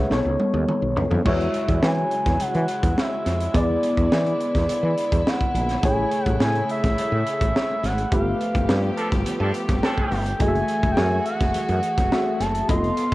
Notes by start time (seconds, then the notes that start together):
Already playing: A3 E4 G#4 B4 C#5 E5 F#5
0.10 B1 B3 D#4 A4 C#5, snare
0.25 C#2
0.39 high tom
0.54 D#2, high tom
0.68 mid tom
0.82 B1
0.96 C#2, floor tom
1.11 F2, floor tom
1.24 E2 C#3 F#3 G#3 E4 F#4 C#5 E5, kick, crash
1.41 closed hi-hat
1.54 closed hi-hat
1.69 E2, kick, closed hi-hat
1.83 E3 G#5, snare
2.11 closed hi-hat
2.26 E2, kick, snare, closed hi-hat
2.40 F#5, muted fretless electric bass stroke, closed hi-hat
2.55 E3, closed hi-hat
2.68 closed hi-hat
2.83 E2, kick, closed hi-hat
2.98 E5, snare
3.26 F2, snare, closed hi-hat
3.41 closed hi-hat
3.53 E2 D3 B3 E4 G#4 D5, kick, closed hi-hat
3.83 closed hi-hat
3.97 E2, kick, closed hi-hat
4.12 E3, snare
4.27 closed hi-hat
4.41 closed hi-hat
4.55 E2, kick, snare, closed hi-hat
4.68 muted fretless electric bass stroke, closed hi-hat
4.83 E3
4.98 closed hi-hat
5.12 E2, kick, closed hi-hat
5.27 F#5, snare
5.41 kick, closed hi-hat
5.54 A#1, closed hi-hat
5.69 snare, closed hi-hat
5.82 A1 C#3 A3 E4 G#4 C#5 G#5, kick, closed hi-hat
6.12 closed hi-hat
6.26 A1 F#5, kick, closed hi-hat
6.40 A2 G#5, snare
6.55 closed hi-hat
6.69 E5, closed hi-hat
6.83 A1, kick, snare, closed hi-hat
6.97 muted fretless electric bass stroke, closed hi-hat
7.12 A2
7.26 closed hi-hat
7.41 A1, kick, closed hi-hat
7.56 snare
7.83 G#1 F#5, snare, closed hi-hat
7.98 closed hi-hat
8.11 G1 F3 A3 B3 F4 G4 B4 F5, kick, closed hi-hat
8.41 closed hi-hat
8.55 G1, kick, closed hi-hat
8.69 G2, snare
8.97 F3 D4 A4, closed hi-hat
9.12 G1, kick, snare, closed hi-hat
9.26 muted fretless electric bass stroke, closed hi-hat
9.40 G2 F3 D4 A4
9.54 closed hi-hat
9.69 G1, kick, snare, closed hi-hat
9.83 F3 D4 A4 G5, snare
9.98 kick
10.12 G1, open hi-hat
10.26 closed hi-hat
10.39 F#1 E3 A3 F#4 G#4 D#5 G#5, kick, closed hi-hat
10.48 E5
10.56 closed hi-hat
10.68 closed hi-hat
10.83 F#1, kick, closed hi-hat
10.92 G5
10.97 F#2 G#5, snare
11.26 F#5, closed hi-hat
11.40 F#1, kick, snare, closed hi-hat
11.54 muted fretless electric bass stroke, closed hi-hat
11.68 F#2, closed hi-hat
11.83 closed hi-hat
11.97 F#1, kick, snare, closed hi-hat
12.11 A3 F#4 G#4 E5, snare
12.40 F#1 A5, snare, closed hi-hat
12.55 closed hi-hat
12.68 F1 F3 A3 B3 F4 A4 D#5 C6, kick, closed hi-hat
12.84 closed hi-hat
12.97 closed hi-hat